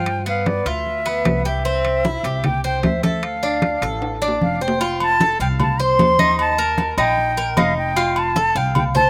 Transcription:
0.00 0.60 G2 medium
0.00 0.25 F4 medium
0.00 0.27 G5 loud
0.06 high conga soft
0.06 high timbale medium
0.26 0.65 B3 medium
0.26 0.49 F5 medium
0.26 high conga soft
0.46 0.68 D5 medium
0.46 high conga medium
0.46 high timbale medium
0.46 low timbale medium
0.65 1.21 D2 medium
0.65 1.04 F4 medium
0.65 1.45 E5 loud
0.65 high conga soft
0.65 high timbale medium
0.86 high conga soft
1.06 1.44 B3 medium
1.06 high conga soft
1.25 2.18 C2 medium
1.25 high conga medium
1.25 high timbale loud
1.25 low timbale medium
1.45 1.64 G4 medium
1.45 2.47 E5 loud
1.65 2.03 C4 medium
1.65 high conga soft
1.85 high conga soft
1.85 high timbale medium
2.05 2.24 E4 medium
2.05 high conga medium
2.05 low timbale medium
2.23 2.79 C2 medium
2.23 2.63 G4 medium
2.23 high timbale medium
2.44 2.64 G5 loud
2.44 high conga soft
2.44 low conga medium
2.44 high timbale medium
2.64 3.02 C5 medium
2.64 2.83 G5 medium
2.64 high conga soft
2.83 3.76 D2 medium
2.83 3.02 E5 medium
2.83 high conga medium
2.83 high timbale medium
2.83 low timbale medium
3.03 3.42 A4 medium
3.03 3.25 E5 medium
3.03 high conga medium
3.03 high timbale medium
3.23 4.15 F5 medium
3.23 high conga soft
3.23 high timbale medium
3.43 3.81 D4 medium
3.43 high conga soft
3.62 high conga medium
3.62 high timbale medium
3.62 low timbale medium
3.82 4.37 A1 loud
3.82 4.21 A4 medium
3.82 high conga soft
3.82 high timbale medium
4.02 high conga soft
4.02 high timbale medium
4.22 4.60 D4 medium
4.22 high conga soft
4.28 low timbale medium
4.41 5.34 F1 medium
4.41 4.64 F5 medium
4.41 high conga medium
4.61 4.80 C5 medium
4.61 5.01 G5 medium
4.61 high conga soft
4.68 low timbale medium
4.81 5.19 F4 medium
4.81 high conga soft
4.81 low agogo medium
5.00 5.38 A5 loud
5.00 high conga soft
5.00 low agogo loud
5.20 5.40 A4 medium
5.20 high conga medium
5.20 low timbale medium
5.39 5.95 C2 loud
5.39 5.79 F5 medium
5.39 5.47 G5 medium
5.39 low agogo medium
5.60 5.82 A5 medium
5.60 high conga soft
5.60 low conga medium
5.60 low agogo loud
5.80 6.18 C5 medium
5.80 6.39 C6 loud
5.80 high conga soft
5.99 6.92 D#2 medium
5.99 high conga medium
5.99 low timbale medium
5.99 low agogo medium
6.19 6.57 D#4 medium
6.19 high conga medium
6.39 6.95 A5 loud
6.39 high conga soft
6.39 low agogo loud
6.58 6.97 A#4 medium
6.58 high conga soft
6.58 low agogo medium
6.78 high conga medium
6.78 low timbale medium
6.78 low agogo medium
6.97 7.53 A#1 loud
6.97 7.36 D#4 medium
6.97 7.60 G5 loud
6.97 high conga soft
6.97 low agogo loud
7.17 high conga soft
7.37 7.56 A#4 medium
7.37 high conga soft
7.37 low agogo medium
7.57 8.50 F1 medium
7.57 7.95 D#4 medium
7.57 7.77 F5 medium
7.57 high conga medium
7.57 low timbale medium
7.57 low agogo loud
7.77 8.20 G5 medium
7.77 high conga soft
7.96 8.35 F4 loud
7.96 high conga soft
7.96 low agogo medium
8.16 8.59 A5 loud
8.16 high conga soft
8.16 low agogo loud
8.36 8.55 A4 medium
8.36 high conga medium
8.36 low timbale medium
8.55 9.10 C2 loud
8.55 8.94 F5 medium
8.55 8.76 G5 medium
8.55 low agogo medium
8.75 8.84 G5 loud
8.75 high conga soft
8.75 low conga medium
8.75 low agogo loud
8.95 9.10 C5 medium
8.95 9.10 A5 loud
8.95 high conga soft
8.95 low conga medium

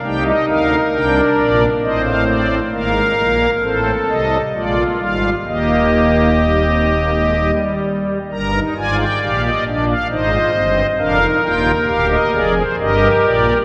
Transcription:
0.04 0.32 C2 medium
0.04 0.32 C3 medium
0.04 0.80 D#4 medium
0.04 0.32 G4 medium
0.04 0.23 G5 medium
0.26 0.45 D#5 medium
0.48 0.76 D2 medium
0.48 0.76 D3 medium
0.48 1.63 A#4 medium
0.48 0.76 F5 medium
0.93 1.21 C2 medium
0.93 1.21 C3 medium
0.93 1.70 D4 medium
0.93 1.21 G5 medium
1.38 1.66 A#1 medium
1.38 1.66 A#2 medium
1.38 1.66 D5 medium
1.82 2.59 A1 medium
1.82 2.59 A2 medium
1.82 2.59 C4 medium
1.82 2.59 C5 medium
1.82 2.02 D#5 medium
2.05 2.24 F5 medium
2.27 2.55 D5 medium
2.72 3.00 G#1 medium
2.72 3.00 G#2 medium
2.72 2.91 A#3 medium
2.72 3.50 A#4 medium
2.72 3.50 F5 medium
2.95 3.14 G#3 medium
3.18 3.46 A#1 medium
3.18 3.46 A#2 medium
3.18 3.46 A#3 medium
3.62 3.91 A1 medium
3.62 3.91 A2 medium
3.62 3.91 C4 medium
3.62 4.42 A4 medium
3.62 3.91 C5 medium
4.09 4.37 C2 medium
4.09 4.37 C3 medium
4.09 4.37 G3 medium
4.09 4.37 D#5 medium
4.54 4.83 A#1 medium
4.54 4.84 A#2 medium
4.54 4.75 G#3 medium
4.54 5.35 F4 medium
4.54 4.84 D5 medium
4.78 4.98 A#3 medium
5.00 5.30 G#1 medium
5.00 5.30 G#2 medium
5.00 5.30 G3 medium
5.00 5.30 F5 medium
5.47 7.51 D#1 medium
5.47 7.51 D#2 medium
5.47 6.29 A#3 medium
5.47 7.51 G4 medium
5.47 7.51 D#5 medium
6.43 6.63 G3 medium
6.67 6.87 C4 medium
6.90 7.10 A#3 medium
7.14 7.34 G#3 medium
7.38 8.18 G3 medium
8.31 8.60 G1 medium
8.31 8.60 G2 medium
8.31 8.51 G3 medium
8.31 8.60 A#4 medium
8.31 8.60 A#5 medium
8.54 8.74 D#4 medium
8.77 9.05 G#1 medium
8.77 9.05 G#2 medium
8.77 9.05 F4 medium
8.77 9.65 D5 medium
8.77 8.96 G#5 medium
9.00 9.19 G5 medium
9.23 9.50 A#1 medium
9.23 9.50 A#2 medium
9.23 9.50 G4 medium
9.23 9.41 F5 medium
9.45 9.64 D#5 medium
9.67 9.94 A#1 medium
9.67 9.94 A#2 medium
9.67 9.94 D4 medium
9.67 9.85 D5 medium
9.89 10.07 F5 medium
10.10 10.38 G#1 medium
10.10 10.38 G#2 medium
10.10 10.29 D#4 medium
10.10 10.86 C5 medium
10.10 10.86 D#5 medium
10.32 10.51 F4 medium
10.54 10.82 G1 medium
10.54 10.82 G2 medium
10.54 10.82 C4 medium
10.98 11.26 F1 medium
10.98 11.26 F2 medium
10.98 11.18 D4 loud
10.98 12.54 A#4 medium
10.98 11.26 F5 medium
11.21 11.40 D#4 loud
11.43 11.71 D#1 medium
11.43 11.71 D#2 medium
11.43 11.71 F4 loud
11.43 11.71 G5 medium
11.87 12.16 D1 medium
11.87 12.16 D2 medium
11.87 12.16 G4 loud
11.87 12.07 F5 medium
12.11 12.30 D#5 medium
12.33 12.62 F1 medium
12.33 12.62 F2 medium
12.33 12.62 G#4 loud
12.33 12.53 D5 medium
12.56 12.76 C5 medium
12.79 13.07 G1 medium
12.79 13.08 G2 medium
12.79 13.58 G4 loud
12.79 13.58 A#4 medium
12.79 13.08 D#5 medium
13.25 13.53 A#1 medium
13.25 13.54 A#2 medium
13.25 13.53 D5 medium

